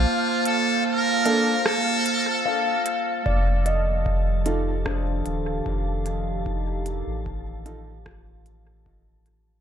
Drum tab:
HH |-x-x-x-x|-x-x-x-x|-x-x-x-x|
SD |----r---|----r---|----r---|
BD |--------|o-o-o-o-|o-o-o-o-|